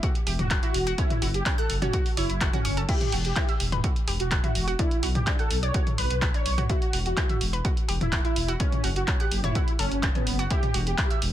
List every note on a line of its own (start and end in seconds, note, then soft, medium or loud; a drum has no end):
0.03 0.12 F#4 medium
0.03 kick loud
0.03 closed hi-hat medium
0.15 closed hi-hat soft
0.27 0.37 E1 loud
0.27 0.32 G4 medium
0.27 open hi-hat loud
0.39 0.59 E1 medium
0.39 0.57 F#4 medium
0.39 closed hi-hat soft
0.39 mid tom loud
0.50 0.62 F#5 medium
0.50 kick loud
0.50 clap loud
0.50 closed hi-hat medium
0.63 0.74 E4 medium
0.63 0.90 F#4 medium
0.63 closed hi-hat soft
0.74 0.94 E1 medium
0.74 open hi-hat loud
0.87 0.98 F#4 loud
0.87 closed hi-hat soft
0.98 1.07 C#4 medium
0.98 1.26 E4 medium
0.98 kick loud
0.98 closed hi-hat medium
1.10 closed hi-hat soft
1.10 mid tom loud
1.22 1.42 F#1 loud
1.22 1.28 F#4 medium
1.22 open hi-hat loud
1.34 1.53 G4 medium
1.34 closed hi-hat soft
1.46 1.55 C#4 medium
1.46 kick loud
1.46 clap loud
1.46 closed hi-hat medium
1.58 1.76 A4 medium
1.58 1.67 F#5 medium
1.58 closed hi-hat soft
1.70 1.89 F#1 loud
1.70 open hi-hat loud
1.82 1.91 C#4 medium
1.82 2.09 F#4 loud
1.82 closed hi-hat soft
1.82 mid tom loud
1.93 2.03 F#4 medium
1.93 kick loud
1.93 closed hi-hat medium
2.06 open hi-hat medium
2.17 2.27 F#1 loud
2.17 2.45 E4 loud
2.17 2.26 C#5 medium
2.17 open hi-hat loud
2.30 2.49 F#1 medium
2.30 closed hi-hat soft
2.41 2.52 F#4 loud
2.41 kick loud
2.41 clap loud
2.41 closed hi-hat medium
2.53 2.81 C#4 loud
2.53 2.59 F#4 loud
2.53 closed hi-hat soft
2.53 mid tom loud
2.65 2.85 F#1 medium
2.65 2.77 C#6 medium
2.65 open hi-hat loud
2.77 2.88 A4 medium
2.77 closed hi-hat soft
2.88 2.98 E4 medium
2.88 3.16 G4 loud
2.88 kick loud
2.88 closed hi-hat medium
2.88 crash medium
3.01 closed hi-hat soft
3.01 mid tom medium
3.12 3.32 E1 loud
3.12 3.18 F#4 medium
3.12 open hi-hat loud
3.25 3.61 G4 loud
3.25 closed hi-hat soft
3.36 3.46 E4 medium
3.36 kick loud
3.36 clap loud
3.36 closed hi-hat medium
3.49 3.57 E5 medium
3.49 closed hi-hat soft
3.60 3.80 E1 loud
3.60 open hi-hat loud
3.72 3.83 B4 medium
3.72 closed hi-hat soft
3.72 mid tom medium
3.84 3.93 F#4 medium
3.84 kick loud
3.84 closed hi-hat medium
3.96 closed hi-hat soft
4.08 4.18 E1 loud
4.08 4.13 G4 medium
4.08 open hi-hat loud
4.20 4.40 E1 medium
4.20 4.38 F#4 medium
4.20 closed hi-hat soft
4.31 4.43 F#5 medium
4.31 kick loud
4.31 clap loud
4.31 closed hi-hat medium
4.44 4.55 E4 medium
4.44 4.71 F#4 medium
4.44 closed hi-hat soft
4.44 mid tom medium
4.55 4.75 E1 medium
4.55 open hi-hat loud
4.67 4.79 F#4 loud
4.67 closed hi-hat soft
4.79 4.88 D4 medium
4.79 5.07 E4 loud
4.79 kick loud
4.79 closed hi-hat medium
4.91 closed hi-hat soft
5.03 5.23 B1 loud
5.03 5.08 F#4 medium
5.03 open hi-hat loud
5.15 5.34 G4 loud
5.15 closed hi-hat soft
5.15 mid tom medium
5.27 5.36 D4 medium
5.27 kick loud
5.27 clap loud
5.27 closed hi-hat medium
5.39 5.57 A4 medium
5.39 5.48 F#5 medium
5.39 closed hi-hat soft
5.51 5.70 B1 loud
5.51 open hi-hat loud
5.63 5.90 C#5 loud
5.63 5.74 D5 medium
5.63 closed hi-hat soft
5.74 5.84 F#4 medium
5.74 kick loud
5.74 closed hi-hat medium
5.87 closed hi-hat soft
5.87 mid tom medium
5.98 6.08 B1 loud
5.98 6.26 B4 loud
5.98 6.04 B4 medium
5.98 open hi-hat loud
6.10 6.30 B1 medium
6.10 closed hi-hat soft
6.22 6.34 B5 medium
6.22 kick loud
6.22 clap loud
6.22 closed hi-hat medium
6.34 6.45 D4 medium
6.34 6.62 C#5 loud
6.34 closed hi-hat soft
6.46 6.66 B1 medium
6.46 open hi-hat loud
6.58 6.69 F#4 loud
6.58 closed hi-hat soft
6.58 mid tom medium
6.69 6.79 E4 medium
6.69 6.97 F#4 loud
6.69 kick loud
6.69 closed hi-hat medium
6.82 closed hi-hat soft
6.93 7.13 E1 loud
6.93 6.99 F#4 medium
6.93 open hi-hat loud
7.06 7.42 F#4 loud
7.06 closed hi-hat soft
7.17 7.26 E4 medium
7.17 kick loud
7.17 clap loud
7.17 closed hi-hat medium
7.29 7.38 E5 medium
7.29 closed hi-hat soft
7.29 mid tom medium
7.41 7.61 E1 loud
7.41 open hi-hat loud
7.53 7.64 B4 medium
7.53 closed hi-hat soft
7.65 7.74 F#4 medium
7.65 kick loud
7.65 closed hi-hat medium
7.77 closed hi-hat soft
7.88 7.99 E1 loud
7.88 7.94 G4 medium
7.88 open hi-hat loud
8.01 8.21 E1 medium
8.01 8.19 E4 medium
8.01 closed hi-hat soft
8.01 mid tom medium
8.12 8.24 F#5 medium
8.12 kick loud
8.12 clap loud
8.12 closed hi-hat medium
8.25 8.36 E4 medium
8.25 8.52 E4 medium
8.25 closed hi-hat soft
8.36 8.56 E1 medium
8.36 open hi-hat loud
8.48 8.59 F#4 loud
8.48 closed hi-hat soft
8.60 8.69 C#4 medium
8.60 8.88 C#4 loud
8.60 kick loud
8.60 closed hi-hat medium
8.72 closed hi-hat soft
8.72 mid tom medium
8.84 9.04 F#1 loud
8.84 8.89 F#4 medium
8.84 open hi-hat loud
8.96 9.14 F#4 medium
8.96 closed hi-hat soft
9.08 9.17 C#4 medium
9.08 kick loud
9.08 clap loud
9.08 closed hi-hat medium
9.20 9.38 G4 medium
9.20 9.29 F#5 medium
9.20 closed hi-hat soft
9.31 9.51 F#1 loud
9.31 open hi-hat loud
9.44 9.71 E4 loud
9.44 9.55 C#5 medium
9.44 closed hi-hat soft
9.44 mid tom medium
9.55 9.65 F#4 medium
9.55 kick loud
9.55 closed hi-hat medium
9.68 closed hi-hat soft
9.79 9.89 F#1 loud
9.79 10.07 C#4 loud
9.79 9.85 A4 medium
9.79 open hi-hat loud
9.91 10.11 F#1 medium
9.91 closed hi-hat soft
10.03 10.15 A5 medium
10.03 kick loud
10.03 clap loud
10.03 closed hi-hat medium
10.15 10.43 B3 medium
10.15 10.26 C#4 medium
10.15 closed hi-hat soft
10.15 mid tom medium
10.27 10.47 F#1 medium
10.27 open hi-hat loud
10.39 10.50 F#4 loud
10.39 closed hi-hat soft
10.50 10.60 E4 medium
10.50 10.78 G4 loud
10.50 kick loud
10.50 closed hi-hat medium
10.63 closed hi-hat soft
10.63 mid tom medium
10.74 10.94 E1 loud
10.74 10.80 F#4 medium
10.74 open hi-hat loud
10.87 11.23 G4 loud
10.87 closed hi-hat soft
10.98 11.07 E4 medium
10.98 kick loud
10.98 clap loud
10.98 closed hi-hat medium
11.11 11.19 E5 medium
11.11 closed hi-hat soft
11.22 11.33 E1 loud
11.22 open hi-hat loud